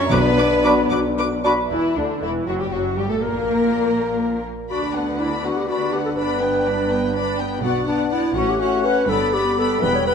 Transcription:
Already playing: C#4 C#5
0.10 B1 B2 F#3 B3 D4 B4 D6
0.37 F#3 B4 D6
0.64 F#3 D4 F#4 B4 B5 D6
0.90 B1 F#3 B4 D6
1.18 F#3 B4 D6
1.44 F#3 D4 F#4 B4 B5 D6
1.71 E1 E2 E3 E4
1.97 D2 D3 D4
2.21 E1 E2 E3 E4
2.46 F#1 F#2 F#3 F#4
2.59 G2 G3 G4
2.72 F#1 F#2 F#3 F#4
2.96 G1 G2 G3 G4
3.09 A2 A3 A4
3.21 A#1 A#2 A#3 A#4
4.70 D2 D3 B3 D4 F#4 D5 B5
4.94 B3 D4 B4 F#5
5.19 D4 E4 D5 B5
5.44 B3 F#4 B4 F#5
5.56 G4
5.68 D4 F#4 D5 B5
5.92 B3 G4 B4 F#5
6.05 A4
6.16 G1 G2 D4 B4 D5 B5
6.40 B3 B4 G5
6.65 D4 D5 B5
6.89 B3 B4 G5
7.14 D4 D5 B5
7.38 B3 B4 G5
7.61 B1 B2 B3 D4 F#4 D5 F#5
7.86 B3 D4 D5 F#5
8.10 B3 E4 D5 F#5
8.35 A1 A2 A3 C#4 F#4 C#5 F#5
8.49 G4
8.59 C#4 F#4 C#5 F#5
8.84 C#4 B4 C#5 F#5
9.09 G1 G2 G3 B3 A4 D5 B5
9.32 B3 G4 D5 B5
9.58 B3 A4 D5 B5
9.81 E1 E2 B3 B4 G5 B5
9.95 C#5
10.05 B3 B4 G5 B5

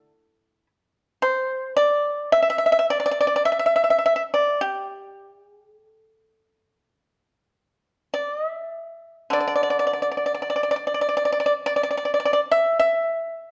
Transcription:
Already playing: D3 E4 A4
1.22 C5
1.76 D5
2.32 E5
2.42 E5
2.50 E5
2.58 E5
2.66 E5
2.72 E5
2.79 E5
2.90 D5
3.00 D5
3.06 D5
3.11 D5
3.20 D5
3.27 D5
3.36 D5
3.45 E5
3.52 E5
3.59 E5
3.66 E5
3.76 E5
3.84 E5
3.90 E5
3.99 E5
4.06 E5
4.16 E5
4.34 D5
4.61 G4
5.35 G#4
5.81 A4
8.14 D5
8.35 D#5
8.48 E5
9.30 D3 D5
9.41 D5
9.48 D5
9.56 D5
9.63 D5
9.70 D5
9.79 D5
9.87 D5
9.93 D5
10.02 D5
10.11 D5
10.17 D5
10.26 D5
10.34 D5
10.42 D5
10.50 D5
10.56 D5
10.63 D5
10.71 D5
10.76 D5
10.87 D5
10.94 D5
11.01 D5
11.09 D5
11.17 D5
11.25 D5
11.33 D5
11.40 D5
11.46 D5
11.66 D5
11.76 D5
11.83 D5
11.91 D5
11.97 D5
12.05 D5
12.14 D5
12.20 D5
12.25 D5
12.33 D5
12.51 E5
12.80 E5

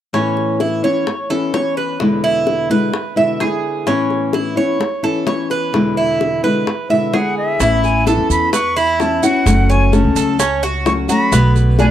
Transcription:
0.13 A2 E3 B3 C#4 E4, high bongo
0.37 high bongo
0.60 E4, high bongo
0.83 E3 B3 C#4 E4 C#5
1.07 muted nylon-string guitar stroke, high bongo
1.30 E3 B3 C#4 E4 A4, high bongo
1.53 E3 B3 C#4 E4 C#5, high bongo, low bongo
1.77 B4, high bongo
2.00 E2 B2 D3 G#3 B3 E4, high bongo
2.24 E4, high bongo
2.47 high bongo
2.69 B2 D3 G#3 B3 E4 B4
2.93 muted nylon-string guitar stroke, high bongo
3.16 B2 D3 G#3 B3 E4 E5, high bongo
3.40 D3 G#3 B3 E4 G#4, high bongo, low bongo
3.86 A2 E3 B3 C#4 E4, high bongo
4.10 high bongo
4.33 E4, high bongo
4.56 E3 B3 C#4 E4 C#5
4.80 muted nylon-string guitar stroke, high bongo
5.03 E3 B3 C#4 E4 A4, high bongo
5.26 E3 B3 C#4 E4 C#5, high bongo, low bongo
5.50 B4, high bongo
5.73 E2 B2 D3 G#3 B3 E4, high bongo
5.97 E4, high bongo
6.21 high bongo
6.43 B2 D3 G#3 B3 E4 B4
6.67 muted nylon-string guitar stroke, high bongo
6.90 B2 D3 G#3 B3 E4 E5, high bongo
7.13 D3 G#3 B3 E4 G#4 F#5, high bongo, low bongo
7.38 E5
7.59 A1 E3 B3 C#4 E4, high bongo, maracas
7.84 G#5, high bongo, maracas
8.06 E3 B3 C#4 E4 A4 A5, high bongo, maracas
8.18 E2
8.29 E2 B5, maracas
8.53 B4 C#6, muted nylon-string guitar stroke, high bongo, maracas
8.76 E4 B5, high bongo, maracas
9.00 E3 B3 C#4 E4 A5, high bongo, low bongo, maracas
9.23 B3 C#4 E4 F#4 F#5, high bongo, maracas
9.46 F#1 C#3 F#3 A3 C#4 F#4, high bongo, maracas
9.70 C#5 G#5, high bongo, maracas
9.92 C#3 F#3 A3 C#4 F#4 A5, high bongo, maracas
10.04 C#2
10.15 C#2 A4, maracas
10.39 C#4, muted nylon-string guitar stroke, high bongo, maracas
10.63 F#4, high bongo, maracas
10.85 F#3 A3 C#4 F#4 C#6, high bongo, low bongo, maracas
11.09 F#3 A3 C#4 F#4 B5, maracas
11.32 B1 B2 D3 A3 B3 F#4, high bongo, maracas
11.55 high bongo, maracas
11.78 B2 D3 A3 B3 D4 F#4 G#5, high bongo, maracas

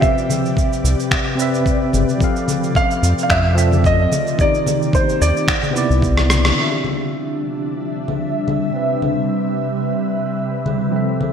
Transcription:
Already playing: G4 D5
0.00 C3 C4 B4 E5, kick, cabasa
0.05 E5
0.18 cabasa
0.30 low conga, cabasa
0.46 cabasa
0.57 kick, cabasa
0.73 cabasa
0.84 C2, cabasa
1.00 cabasa
1.11 finger snap, kick, cabasa
1.35 C3 C4, cabasa
1.40 B4 E5
1.54 cabasa
1.66 kick, cabasa
1.93 G1, low conga, cabasa
2.09 cabasa
2.17 F3 A3 C4 F4, kick
2.21 A4 F5, cabasa
2.36 cabasa
2.48 low conga, cabasa
2.63 cabasa
2.75 F5, kick, cabasa
2.91 cabasa
3.03 F2, cabasa
3.18 cabasa
3.23 F5
3.30 F2 E5, finger snap, kick, cabasa
3.55 F3 C4 A4 E5, cabasa
3.72 low conga, cabasa
3.84 D#5, kick, cabasa
4.10 A#3 D#4 G4, low conga, cabasa
4.27 cabasa
4.36 D#3 C4, kick, cabasa
4.40 D#4 G4 D5
4.54 cabasa
4.66 low conga, cabasa
4.82 cabasa
4.93 C5, kick, cabasa
5.09 cabasa
5.21 D#2 D5, cabasa
5.37 cabasa
5.47 B3 D4 E4, finger snap, kick, cabasa
5.63 low conga, cabasa
5.71 C3 B3
5.75 E4 D5, cabasa
5.90 C2, cabasa
6.02 kick, cabasa
6.17 cross-stick, cabasa
6.30 cross-stick, low conga, cabasa
6.45 cross-stick, cabasa
6.54 C3 D3 F3 G3 C4 D4 F4 E5
6.58 G4 E5
6.84 low conga
8.08 low conga
8.48 low conga
8.71 C3 C4 B4
8.76 B4 E5
9.02 low conga
10.66 low conga
10.90 F3 C4 E4 A4
10.94 A4 E5
11.21 low conga

